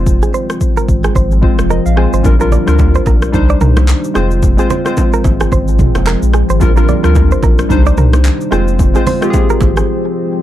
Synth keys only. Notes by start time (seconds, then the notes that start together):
Already playing: G#3 C4 F4 C5
1.41 G#3 C4 F4 C5
1.70 D#5
1.86 F5
1.96 G#3 C4 F4 C5 G#5
2.23 G3 D4 F4 A#4
2.39 G3 D4 F4 A#4
2.66 G3 D4 F4 A#4
3.32 G3 D4 D#4 C5
4.14 G#3 C4 F4 C5
4.57 G#3 C4 F4 C5
4.85 G#3 C4 F4 C5
6.60 G3 D4 F4 A#4
6.76 G3 D4 F4 A#4
7.03 G3 D4 F4 A#4
7.69 G3 D4 D#4 C5
8.51 G#3 C4 F4 C5
8.94 G#3 C4 F4 C5
9.21 G#3 C4 F4 G4
9.30 G#4